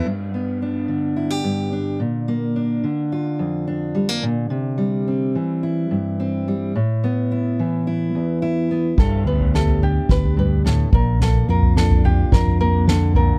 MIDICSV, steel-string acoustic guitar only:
0, 0, Header, 1, 2, 480
1, 0, Start_track
1, 0, Tempo, 557621
1, 50, Time_signature, 4, 2, 24, 8
1, 11524, End_track
2, 0, Start_track
2, 0, Title_t, "Steel-string acoustic guitar"
2, 0, Program_c, 0, 25
2, 48, Note_on_c, 0, 43, 53
2, 293, Note_on_c, 0, 59, 32
2, 536, Note_on_c, 0, 62, 37
2, 759, Note_on_c, 0, 50, 35
2, 1002, Note_on_c, 0, 64, 38
2, 1123, Note_off_c, 0, 64, 0
2, 1123, Note_on_c, 0, 67, 32
2, 1230, Note_off_c, 0, 43, 0
2, 1240, Note_on_c, 0, 43, 43
2, 1473, Note_off_c, 0, 62, 0
2, 1483, Note_on_c, 0, 62, 40
2, 1696, Note_off_c, 0, 43, 0
2, 1698, Note_off_c, 0, 62, 0
2, 1703, Note_off_c, 0, 59, 0
2, 1720, Note_on_c, 0, 46, 42
2, 1726, Note_off_c, 0, 67, 0
2, 1964, Note_on_c, 0, 58, 42
2, 2203, Note_on_c, 0, 62, 38
2, 2431, Note_off_c, 0, 50, 0
2, 2441, Note_on_c, 0, 50, 43
2, 2446, Note_off_c, 0, 46, 0
2, 2689, Note_on_c, 0, 65, 39
2, 2920, Note_on_c, 0, 41, 45
2, 3153, Note_off_c, 0, 62, 0
2, 3163, Note_on_c, 0, 62, 44
2, 3394, Note_off_c, 0, 58, 0
2, 3398, Note_on_c, 0, 55, 44
2, 3518, Note_off_c, 0, 55, 0
2, 3518, Note_on_c, 0, 58, 39
2, 3619, Note_off_c, 0, 41, 0
2, 3620, Note_off_c, 0, 62, 0
2, 3623, Note_off_c, 0, 65, 0
2, 3638, Note_on_c, 0, 46, 50
2, 3646, Note_off_c, 0, 58, 0
2, 3857, Note_off_c, 0, 46, 0
2, 3875, Note_on_c, 0, 48, 57
2, 4113, Note_on_c, 0, 55, 42
2, 4369, Note_on_c, 0, 60, 37
2, 4605, Note_off_c, 0, 50, 0
2, 4606, Note_off_c, 0, 48, 0
2, 4608, Note_on_c, 0, 52, 42
2, 4846, Note_on_c, 0, 64, 42
2, 5086, Note_on_c, 0, 43, 45
2, 5324, Note_off_c, 0, 60, 0
2, 5335, Note_on_c, 0, 60, 48
2, 5566, Note_off_c, 0, 55, 0
2, 5577, Note_on_c, 0, 55, 38
2, 5783, Note_off_c, 0, 43, 0
2, 5785, Note_off_c, 0, 52, 0
2, 5788, Note_off_c, 0, 60, 0
2, 5815, Note_on_c, 0, 45, 62
2, 5817, Note_off_c, 0, 55, 0
2, 6058, Note_on_c, 0, 59, 42
2, 6288, Note_off_c, 0, 64, 0
2, 6298, Note_on_c, 0, 64, 49
2, 6538, Note_on_c, 0, 52, 48
2, 6765, Note_off_c, 0, 64, 0
2, 6775, Note_on_c, 0, 64, 47
2, 7015, Note_on_c, 0, 40, 47
2, 7017, Note_off_c, 0, 45, 0
2, 7239, Note_off_c, 0, 64, 0
2, 7249, Note_on_c, 0, 64, 56
2, 7486, Note_off_c, 0, 59, 0
2, 7496, Note_on_c, 0, 59, 39
2, 7708, Note_off_c, 0, 59, 0
2, 7709, Note_off_c, 0, 52, 0
2, 7727, Note_off_c, 0, 40, 0
2, 7730, Note_on_c, 0, 43, 63
2, 7733, Note_off_c, 0, 64, 0
2, 7981, Note_on_c, 0, 59, 43
2, 8211, Note_on_c, 0, 67, 41
2, 8456, Note_on_c, 0, 62, 43
2, 8684, Note_off_c, 0, 67, 0
2, 8694, Note_on_c, 0, 67, 49
2, 8915, Note_off_c, 0, 43, 0
2, 8925, Note_on_c, 0, 43, 57
2, 9164, Note_on_c, 0, 45, 59
2, 9170, Note_off_c, 0, 43, 0
2, 9385, Note_off_c, 0, 67, 0
2, 9386, Note_off_c, 0, 62, 0
2, 9388, Note_off_c, 0, 59, 0
2, 9405, Note_off_c, 0, 45, 0
2, 9408, Note_on_c, 0, 46, 56
2, 9655, Note_on_c, 0, 58, 56
2, 9889, Note_on_c, 0, 65, 47
2, 10125, Note_on_c, 0, 62, 49
2, 10360, Note_off_c, 0, 65, 0
2, 10370, Note_on_c, 0, 65, 52
2, 10598, Note_off_c, 0, 62, 0
2, 10609, Note_on_c, 0, 62, 53
2, 10841, Note_off_c, 0, 58, 0
2, 10851, Note_on_c, 0, 58, 58
2, 11082, Note_on_c, 0, 50, 61
2, 11085, Note_off_c, 0, 46, 0
2, 11298, Note_off_c, 0, 62, 0
2, 11298, Note_off_c, 0, 65, 0
2, 11299, Note_off_c, 0, 58, 0
2, 11318, Note_on_c, 0, 46, 54
2, 11524, Note_off_c, 0, 46, 0
2, 11524, Note_off_c, 0, 50, 0
2, 11524, End_track
0, 0, End_of_file